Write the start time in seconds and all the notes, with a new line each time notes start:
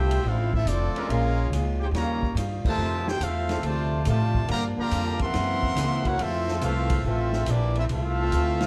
Already playing: C2 D3 F3 A3 C4 E4 F4 G4 C5 E5 G5
0.11 ride
0.24 A1 D3 F3 A3 C4 F4
0.28 C4 E4 A4 F5
0.53 A3 C4 E4 F4 A4 E5, kick
0.65 F1 D3 F3 A3 C4 D4 E4 F4 A4 D5, hi-hat pedal, ride
0.95 G#3 C#4 F4 A#4, muted upright bass stroke, ride
1.09 A#1 A#2 G#3 C#4 F4 G#4 A#4 F5, ride
1.50 C#2 A#2 G#3 C#4 F4, hi-hat pedal, ride
1.80 D#4 G4 G#4 C5 G5
1.91 D#2 C#3 D#3 G3 A#3 C#5 F5, snare, ride
1.95 C#4 F4 G4 A#5
2.23 kick
2.35 G2 D#3 G3 C#4 F4, hi-hat pedal, ride
2.64 C3 D#3 F3 A3 C4 D#4 F4 A4 C5 E5 A5, muted upright bass stroke, kick, crash
2.77 F2 F3 A3 C4 E4
3.07 E4 G4 A4 C5 G5, snare
3.19 E2 F3 A3 C4 E4 F4 A4 F5, hi-hat pedal, ride
3.23 E5
3.49 F3 C4 D4 A4, snare, ride
3.62 D2 C3 D3 F3 A3 C4 F4, ride
3.66 F4 C5 D5 A5
4.05 A2 C3 D3 F3 A3 C4 F4 C5 D5 A5, hi-hat pedal, ride
4.35 kick
4.47 G2 D3 F3 A#3, ride
4.52 D4 G4 D5 F5 A#5
4.76 D3 F3 A#3 F4 A#4, muted upright bass stroke
4.80 G3 D4 G4 D5 F5 A#5
4.91 F2 G2 F3 A#3 D4, hi-hat pedal, ride
5.19 C#3 E3 C4 A#4 E5 F#5 C6, kick, ride
5.33 F#2 E3 A#3 C4, snare, ride
5.63 kick
5.75 C#2 F#2 E3 A#3 C4, snare, hi-hat pedal, ride
6.04 A#3 C#4 E4 F#4 A#4 C#5 F#5, kick, ride
6.19 F2 E3 A3 C4 F4 A4 E5, ride
6.23 C4
6.48 F3 C4 F4 A4, snare
6.60 C2 F2 E3 A3 C4 F4 A4 E5 F5, hi-hat pedal, ride
6.90 kick, ride
7.04 A1 F2 E3 A3 C4 F4 E5
7.08 A4
7.33 snare
7.46 A#1 F2 E3 A3 C4 D4, hi-hat pedal, ride
7.50 A#3 E4 G4 D5
7.75 A3 C4 E4 E5, ride
7.80 C4 F4 A4
7.89 C2 F2 E3 A3 C4 F4, ride
7.95 C4 A4 E5 F5
8.18 F3 C4 F4 A4
8.31 D2 F2 E3 A3 C4, hi-hat pedal, ride
8.60 snare, ride